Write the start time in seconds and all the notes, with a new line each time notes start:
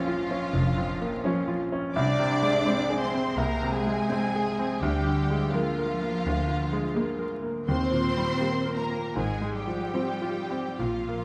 Already playing: A#1 F2 F3 A#3 C#4 F4 F5
0.07 F4
0.31 C#4
0.53 F1 A#1
0.77 F2
1.01 A#3
1.25 F3 C#4
1.48 F4
1.72 C#4
1.95 C2 D4 D5 D6
2.19 C3
2.42 G#3
2.66 G#3 C4
2.90 G#4
3.00 C4 C5 C6
3.14 C4
3.37 C2 A#3 A#4 A#5
3.62 C3
3.73 G#3 G#4 G#5
3.87 G#3
4.11 G#3 C4
4.35 G#4
4.59 C4
4.81 D2 G3 G4 G5
5.07 D3
5.30 G#3
5.52 F3 G#3 A#3 F4 F5
5.78 A#4
6.02 A#3
6.26 D2
6.49 D3
6.72 G#3
6.96 G#3 A#3
7.19 A#4
7.43 A#3
7.68 D#2 D#3 C4 C5 C6
7.92 A#2
8.17 G3
8.41 G3 A#3
8.65 A#4
8.78 A#3 A#4 A#5
8.90 A#3
9.15 G#1 G#2 G#3 G#4 G#5
9.41 G#3
9.55 G3 G4 G5
9.67 F3
9.94 F3 C4
10.22 F4
10.51 C4
10.79 A#1 A#2 F3 F4 F5
11.09 A#3